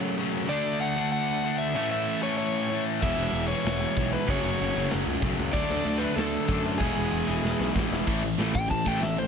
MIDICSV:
0, 0, Header, 1, 6, 480
1, 0, Start_track
1, 0, Tempo, 315956
1, 746, Time_signature, 4, 2, 24, 8
1, 14089, End_track
2, 0, Start_track
2, 0, Title_t, "Overdriven electric guitar"
2, 0, Program_c, 0, 29
2, 745, Note_on_c, 0, 74, 99
2, 1222, Note_off_c, 0, 74, 0
2, 1228, Note_on_c, 0, 78, 105
2, 1675, Note_off_c, 0, 78, 0
2, 1702, Note_on_c, 0, 78, 102
2, 2400, Note_off_c, 0, 78, 0
2, 2406, Note_on_c, 0, 76, 92
2, 2888, Note_off_c, 0, 76, 0
2, 2906, Note_on_c, 0, 76, 97
2, 3380, Note_off_c, 0, 76, 0
2, 3386, Note_on_c, 0, 73, 88
2, 3588, Note_off_c, 0, 73, 0
2, 3606, Note_on_c, 0, 73, 93
2, 4288, Note_off_c, 0, 73, 0
2, 4590, Note_on_c, 0, 76, 91
2, 5277, Note_off_c, 0, 76, 0
2, 5283, Note_on_c, 0, 73, 98
2, 6270, Note_on_c, 0, 71, 81
2, 6286, Note_off_c, 0, 73, 0
2, 6518, Note_off_c, 0, 71, 0
2, 6533, Note_on_c, 0, 73, 75
2, 7420, Note_off_c, 0, 73, 0
2, 8402, Note_on_c, 0, 74, 96
2, 9085, Note_on_c, 0, 71, 87
2, 9156, Note_off_c, 0, 74, 0
2, 9353, Note_off_c, 0, 71, 0
2, 9353, Note_on_c, 0, 69, 94
2, 10089, Note_off_c, 0, 69, 0
2, 10298, Note_on_c, 0, 68, 80
2, 11700, Note_off_c, 0, 68, 0
2, 12991, Note_on_c, 0, 79, 102
2, 13215, Note_off_c, 0, 79, 0
2, 13221, Note_on_c, 0, 81, 79
2, 13485, Note_off_c, 0, 81, 0
2, 13485, Note_on_c, 0, 79, 85
2, 13710, Note_off_c, 0, 79, 0
2, 13710, Note_on_c, 0, 76, 90
2, 13941, Note_off_c, 0, 76, 0
2, 13950, Note_on_c, 0, 72, 81
2, 14089, Note_off_c, 0, 72, 0
2, 14089, End_track
3, 0, Start_track
3, 0, Title_t, "Distorted electric guitar"
3, 0, Program_c, 1, 30
3, 0, Note_on_c, 1, 54, 95
3, 0, Note_on_c, 1, 57, 90
3, 0, Note_on_c, 1, 61, 100
3, 0, Note_on_c, 1, 66, 115
3, 718, Note_off_c, 1, 54, 0
3, 729, Note_off_c, 1, 61, 0
3, 736, Note_off_c, 1, 66, 0
3, 742, Note_off_c, 1, 57, 0
3, 767, Note_on_c, 1, 66, 102
3, 2666, Note_off_c, 1, 66, 0
3, 2666, Note_on_c, 1, 61, 103
3, 2681, Note_on_c, 1, 64, 98
3, 4575, Note_off_c, 1, 61, 0
3, 4582, Note_off_c, 1, 64, 0
3, 4588, Note_on_c, 1, 56, 95
3, 4601, Note_on_c, 1, 59, 91
3, 4611, Note_on_c, 1, 64, 99
3, 6483, Note_off_c, 1, 56, 0
3, 6486, Note_off_c, 1, 59, 0
3, 6492, Note_on_c, 1, 57, 92
3, 6495, Note_off_c, 1, 64, 0
3, 6501, Note_on_c, 1, 61, 112
3, 8399, Note_off_c, 1, 57, 0
3, 8409, Note_off_c, 1, 61, 0
3, 8413, Note_on_c, 1, 54, 93
3, 10324, Note_off_c, 1, 54, 0
3, 10330, Note_on_c, 1, 56, 105
3, 10346, Note_on_c, 1, 59, 109
3, 10353, Note_on_c, 1, 64, 107
3, 12242, Note_off_c, 1, 56, 0
3, 12250, Note_off_c, 1, 59, 0
3, 12254, Note_off_c, 1, 64, 0
3, 13172, Note_on_c, 1, 45, 70
3, 13181, Note_on_c, 1, 52, 85
3, 13414, Note_off_c, 1, 45, 0
3, 13419, Note_off_c, 1, 52, 0
3, 14089, End_track
4, 0, Start_track
4, 0, Title_t, "Distorted electric guitar"
4, 0, Program_c, 2, 30
4, 0, Note_on_c, 2, 42, 72
4, 0, Note_on_c, 2, 49, 72
4, 0, Note_on_c, 2, 54, 87
4, 238, Note_off_c, 2, 42, 0
4, 242, Note_off_c, 2, 54, 0
4, 253, Note_off_c, 2, 49, 0
4, 256, Note_on_c, 2, 42, 78
4, 275, Note_on_c, 2, 49, 81
4, 295, Note_on_c, 2, 54, 86
4, 718, Note_off_c, 2, 49, 0
4, 724, Note_on_c, 2, 50, 85
4, 727, Note_off_c, 2, 42, 0
4, 738, Note_off_c, 2, 54, 0
4, 744, Note_on_c, 2, 57, 90
4, 767, Note_on_c, 2, 62, 102
4, 1442, Note_off_c, 2, 50, 0
4, 1445, Note_off_c, 2, 62, 0
4, 1463, Note_on_c, 2, 62, 91
4, 1471, Note_off_c, 2, 57, 0
4, 1477, Note_on_c, 2, 57, 81
4, 1506, Note_on_c, 2, 50, 70
4, 2160, Note_off_c, 2, 50, 0
4, 2172, Note_off_c, 2, 62, 0
4, 2179, Note_off_c, 2, 57, 0
4, 2179, Note_on_c, 2, 50, 72
4, 2195, Note_on_c, 2, 57, 91
4, 2219, Note_on_c, 2, 62, 85
4, 2644, Note_off_c, 2, 50, 0
4, 2651, Note_on_c, 2, 45, 86
4, 2658, Note_off_c, 2, 57, 0
4, 2670, Note_off_c, 2, 62, 0
4, 2672, Note_on_c, 2, 52, 89
4, 2690, Note_on_c, 2, 57, 108
4, 3359, Note_off_c, 2, 57, 0
4, 3367, Note_off_c, 2, 45, 0
4, 3377, Note_on_c, 2, 57, 76
4, 3392, Note_off_c, 2, 52, 0
4, 3398, Note_on_c, 2, 52, 75
4, 3414, Note_on_c, 2, 45, 68
4, 4090, Note_off_c, 2, 57, 0
4, 4092, Note_off_c, 2, 45, 0
4, 4100, Note_off_c, 2, 52, 0
4, 4110, Note_on_c, 2, 45, 68
4, 4133, Note_on_c, 2, 52, 72
4, 4143, Note_on_c, 2, 57, 91
4, 4576, Note_off_c, 2, 45, 0
4, 4583, Note_on_c, 2, 40, 85
4, 4588, Note_off_c, 2, 52, 0
4, 4593, Note_off_c, 2, 57, 0
4, 4599, Note_on_c, 2, 47, 92
4, 4622, Note_on_c, 2, 52, 100
4, 5290, Note_off_c, 2, 52, 0
4, 5293, Note_off_c, 2, 40, 0
4, 5301, Note_off_c, 2, 47, 0
4, 5308, Note_on_c, 2, 52, 93
4, 5332, Note_on_c, 2, 47, 82
4, 5347, Note_on_c, 2, 40, 67
4, 6013, Note_off_c, 2, 40, 0
4, 6015, Note_off_c, 2, 52, 0
4, 6027, Note_off_c, 2, 47, 0
4, 6031, Note_on_c, 2, 40, 85
4, 6056, Note_on_c, 2, 47, 73
4, 6064, Note_on_c, 2, 52, 80
4, 6491, Note_off_c, 2, 40, 0
4, 6497, Note_on_c, 2, 42, 97
4, 6509, Note_off_c, 2, 47, 0
4, 6513, Note_off_c, 2, 52, 0
4, 6526, Note_on_c, 2, 49, 95
4, 6537, Note_on_c, 2, 54, 103
4, 7209, Note_off_c, 2, 42, 0
4, 7212, Note_off_c, 2, 54, 0
4, 7218, Note_off_c, 2, 49, 0
4, 7218, Note_on_c, 2, 54, 96
4, 7236, Note_on_c, 2, 49, 77
4, 7254, Note_on_c, 2, 42, 70
4, 7910, Note_off_c, 2, 42, 0
4, 7928, Note_on_c, 2, 42, 73
4, 7929, Note_off_c, 2, 54, 0
4, 7933, Note_off_c, 2, 49, 0
4, 7951, Note_on_c, 2, 49, 76
4, 7964, Note_on_c, 2, 54, 82
4, 8381, Note_off_c, 2, 49, 0
4, 8387, Note_on_c, 2, 50, 91
4, 8399, Note_off_c, 2, 54, 0
4, 8403, Note_off_c, 2, 42, 0
4, 8405, Note_on_c, 2, 57, 86
4, 8425, Note_on_c, 2, 62, 93
4, 9090, Note_off_c, 2, 62, 0
4, 9107, Note_off_c, 2, 57, 0
4, 9108, Note_on_c, 2, 62, 85
4, 9112, Note_off_c, 2, 50, 0
4, 9126, Note_on_c, 2, 57, 78
4, 9137, Note_on_c, 2, 50, 69
4, 9813, Note_off_c, 2, 50, 0
4, 9832, Note_on_c, 2, 50, 71
4, 9833, Note_off_c, 2, 62, 0
4, 9837, Note_off_c, 2, 57, 0
4, 9855, Note_on_c, 2, 57, 82
4, 9877, Note_on_c, 2, 62, 82
4, 10311, Note_on_c, 2, 40, 86
4, 10314, Note_off_c, 2, 50, 0
4, 10326, Note_off_c, 2, 57, 0
4, 10334, Note_on_c, 2, 47, 87
4, 10337, Note_off_c, 2, 62, 0
4, 10349, Note_on_c, 2, 52, 84
4, 11013, Note_off_c, 2, 52, 0
4, 11032, Note_on_c, 2, 52, 95
4, 11033, Note_off_c, 2, 40, 0
4, 11033, Note_off_c, 2, 47, 0
4, 11052, Note_on_c, 2, 47, 71
4, 11064, Note_on_c, 2, 40, 59
4, 11753, Note_off_c, 2, 40, 0
4, 11754, Note_off_c, 2, 52, 0
4, 11764, Note_off_c, 2, 47, 0
4, 11772, Note_on_c, 2, 40, 73
4, 11789, Note_on_c, 2, 47, 79
4, 11813, Note_on_c, 2, 52, 79
4, 12244, Note_off_c, 2, 40, 0
4, 12252, Note_off_c, 2, 47, 0
4, 12257, Note_off_c, 2, 52, 0
4, 12265, Note_on_c, 2, 45, 81
4, 12275, Note_on_c, 2, 52, 85
4, 12280, Note_on_c, 2, 57, 88
4, 12490, Note_off_c, 2, 45, 0
4, 12496, Note_off_c, 2, 52, 0
4, 12498, Note_off_c, 2, 57, 0
4, 12510, Note_on_c, 2, 45, 67
4, 12518, Note_on_c, 2, 52, 80
4, 12717, Note_off_c, 2, 45, 0
4, 12720, Note_off_c, 2, 52, 0
4, 12735, Note_on_c, 2, 45, 91
4, 12738, Note_on_c, 2, 52, 91
4, 12749, Note_on_c, 2, 57, 94
4, 12966, Note_off_c, 2, 45, 0
4, 12967, Note_off_c, 2, 52, 0
4, 12973, Note_off_c, 2, 57, 0
4, 12994, Note_on_c, 2, 52, 82
4, 12999, Note_on_c, 2, 45, 77
4, 13205, Note_off_c, 2, 52, 0
4, 13208, Note_off_c, 2, 45, 0
4, 13240, Note_on_c, 2, 45, 80
4, 13248, Note_on_c, 2, 52, 90
4, 13448, Note_off_c, 2, 45, 0
4, 13453, Note_off_c, 2, 52, 0
4, 13475, Note_on_c, 2, 52, 101
4, 13477, Note_on_c, 2, 45, 91
4, 13488, Note_on_c, 2, 57, 112
4, 13689, Note_off_c, 2, 52, 0
4, 13691, Note_off_c, 2, 45, 0
4, 13702, Note_off_c, 2, 57, 0
4, 13707, Note_on_c, 2, 52, 83
4, 13709, Note_on_c, 2, 45, 72
4, 13922, Note_off_c, 2, 52, 0
4, 13923, Note_off_c, 2, 45, 0
4, 13950, Note_on_c, 2, 45, 78
4, 13952, Note_on_c, 2, 52, 79
4, 14089, Note_off_c, 2, 45, 0
4, 14089, Note_off_c, 2, 52, 0
4, 14089, End_track
5, 0, Start_track
5, 0, Title_t, "Picked electric bass"
5, 0, Program_c, 3, 34
5, 4597, Note_on_c, 3, 28, 83
5, 4742, Note_off_c, 3, 28, 0
5, 4821, Note_on_c, 3, 28, 81
5, 4972, Note_off_c, 3, 28, 0
5, 5057, Note_on_c, 3, 28, 93
5, 5355, Note_off_c, 3, 28, 0
5, 5543, Note_on_c, 3, 28, 82
5, 5840, Note_off_c, 3, 28, 0
5, 6030, Note_on_c, 3, 35, 94
5, 6325, Note_off_c, 3, 35, 0
5, 6504, Note_on_c, 3, 30, 97
5, 6653, Note_off_c, 3, 30, 0
5, 6745, Note_on_c, 3, 30, 80
5, 6894, Note_off_c, 3, 30, 0
5, 7004, Note_on_c, 3, 30, 100
5, 7147, Note_off_c, 3, 30, 0
5, 7229, Note_on_c, 3, 30, 94
5, 7376, Note_off_c, 3, 30, 0
5, 7494, Note_on_c, 3, 30, 93
5, 7634, Note_off_c, 3, 30, 0
5, 7694, Note_on_c, 3, 37, 84
5, 7845, Note_off_c, 3, 37, 0
5, 7922, Note_on_c, 3, 35, 94
5, 8078, Note_off_c, 3, 35, 0
5, 8186, Note_on_c, 3, 37, 96
5, 8334, Note_off_c, 3, 37, 0
5, 8405, Note_on_c, 3, 38, 95
5, 8559, Note_off_c, 3, 38, 0
5, 8664, Note_on_c, 3, 38, 93
5, 8812, Note_off_c, 3, 38, 0
5, 8893, Note_on_c, 3, 38, 97
5, 9192, Note_off_c, 3, 38, 0
5, 9360, Note_on_c, 3, 38, 94
5, 9662, Note_off_c, 3, 38, 0
5, 9850, Note_on_c, 3, 42, 95
5, 10328, Note_on_c, 3, 28, 88
5, 10351, Note_off_c, 3, 42, 0
5, 10481, Note_off_c, 3, 28, 0
5, 10589, Note_on_c, 3, 28, 88
5, 10735, Note_off_c, 3, 28, 0
5, 10819, Note_on_c, 3, 28, 98
5, 10968, Note_off_c, 3, 28, 0
5, 11059, Note_on_c, 3, 28, 99
5, 11208, Note_off_c, 3, 28, 0
5, 11284, Note_on_c, 3, 28, 88
5, 11437, Note_off_c, 3, 28, 0
5, 11538, Note_on_c, 3, 35, 85
5, 11687, Note_off_c, 3, 35, 0
5, 11773, Note_on_c, 3, 33, 89
5, 11924, Note_off_c, 3, 33, 0
5, 12017, Note_on_c, 3, 28, 101
5, 12167, Note_off_c, 3, 28, 0
5, 12254, Note_on_c, 3, 33, 92
5, 12674, Note_off_c, 3, 33, 0
5, 12727, Note_on_c, 3, 33, 88
5, 12943, Note_off_c, 3, 33, 0
5, 12973, Note_on_c, 3, 33, 99
5, 13186, Note_off_c, 3, 33, 0
5, 13231, Note_on_c, 3, 33, 82
5, 13436, Note_off_c, 3, 33, 0
5, 13457, Note_on_c, 3, 33, 92
5, 13668, Note_off_c, 3, 33, 0
5, 13686, Note_on_c, 3, 33, 93
5, 14089, Note_off_c, 3, 33, 0
5, 14089, End_track
6, 0, Start_track
6, 0, Title_t, "Drums"
6, 4593, Note_on_c, 9, 36, 102
6, 4600, Note_on_c, 9, 49, 90
6, 4745, Note_off_c, 9, 36, 0
6, 4752, Note_off_c, 9, 49, 0
6, 5081, Note_on_c, 9, 46, 57
6, 5233, Note_off_c, 9, 46, 0
6, 5554, Note_on_c, 9, 46, 58
6, 5571, Note_on_c, 9, 38, 110
6, 5706, Note_off_c, 9, 46, 0
6, 5723, Note_off_c, 9, 38, 0
6, 6024, Note_on_c, 9, 46, 65
6, 6028, Note_on_c, 9, 36, 99
6, 6176, Note_off_c, 9, 46, 0
6, 6180, Note_off_c, 9, 36, 0
6, 6502, Note_on_c, 9, 46, 66
6, 6506, Note_on_c, 9, 36, 113
6, 6654, Note_off_c, 9, 46, 0
6, 6658, Note_off_c, 9, 36, 0
6, 6985, Note_on_c, 9, 46, 63
6, 7137, Note_off_c, 9, 46, 0
6, 7450, Note_on_c, 9, 46, 59
6, 7467, Note_on_c, 9, 38, 115
6, 7602, Note_off_c, 9, 46, 0
6, 7618, Note_off_c, 9, 38, 0
6, 7932, Note_on_c, 9, 46, 68
6, 7934, Note_on_c, 9, 36, 94
6, 8084, Note_off_c, 9, 46, 0
6, 8086, Note_off_c, 9, 36, 0
6, 8413, Note_on_c, 9, 46, 65
6, 8414, Note_on_c, 9, 36, 126
6, 8565, Note_off_c, 9, 46, 0
6, 8566, Note_off_c, 9, 36, 0
6, 8897, Note_on_c, 9, 46, 59
6, 9049, Note_off_c, 9, 46, 0
6, 9377, Note_on_c, 9, 46, 56
6, 9394, Note_on_c, 9, 38, 106
6, 9529, Note_off_c, 9, 46, 0
6, 9546, Note_off_c, 9, 38, 0
6, 9849, Note_on_c, 9, 46, 62
6, 9853, Note_on_c, 9, 36, 103
6, 10001, Note_off_c, 9, 46, 0
6, 10005, Note_off_c, 9, 36, 0
6, 10336, Note_on_c, 9, 36, 107
6, 10338, Note_on_c, 9, 46, 59
6, 10488, Note_off_c, 9, 36, 0
6, 10490, Note_off_c, 9, 46, 0
6, 10816, Note_on_c, 9, 46, 61
6, 10968, Note_off_c, 9, 46, 0
6, 11327, Note_on_c, 9, 38, 62
6, 11479, Note_off_c, 9, 38, 0
6, 11559, Note_on_c, 9, 38, 59
6, 11711, Note_off_c, 9, 38, 0
6, 11782, Note_on_c, 9, 36, 92
6, 11804, Note_on_c, 9, 38, 106
6, 11934, Note_off_c, 9, 36, 0
6, 11956, Note_off_c, 9, 38, 0
6, 12044, Note_on_c, 9, 38, 95
6, 12196, Note_off_c, 9, 38, 0
6, 12258, Note_on_c, 9, 49, 124
6, 12258, Note_on_c, 9, 57, 83
6, 12263, Note_on_c, 9, 36, 108
6, 12410, Note_off_c, 9, 49, 0
6, 12410, Note_off_c, 9, 57, 0
6, 12415, Note_off_c, 9, 36, 0
6, 12508, Note_on_c, 9, 57, 53
6, 12659, Note_off_c, 9, 57, 0
6, 12750, Note_on_c, 9, 57, 74
6, 12767, Note_on_c, 9, 38, 109
6, 12902, Note_off_c, 9, 57, 0
6, 12919, Note_off_c, 9, 38, 0
6, 12986, Note_on_c, 9, 36, 93
6, 12993, Note_on_c, 9, 57, 61
6, 13138, Note_off_c, 9, 36, 0
6, 13145, Note_off_c, 9, 57, 0
6, 13228, Note_on_c, 9, 36, 92
6, 13239, Note_on_c, 9, 57, 78
6, 13380, Note_off_c, 9, 36, 0
6, 13391, Note_off_c, 9, 57, 0
6, 13462, Note_on_c, 9, 36, 79
6, 13467, Note_on_c, 9, 57, 55
6, 13614, Note_off_c, 9, 36, 0
6, 13619, Note_off_c, 9, 57, 0
6, 13702, Note_on_c, 9, 57, 89
6, 13719, Note_on_c, 9, 38, 120
6, 13854, Note_off_c, 9, 57, 0
6, 13870, Note_off_c, 9, 38, 0
6, 13949, Note_on_c, 9, 57, 59
6, 14089, Note_off_c, 9, 57, 0
6, 14089, End_track
0, 0, End_of_file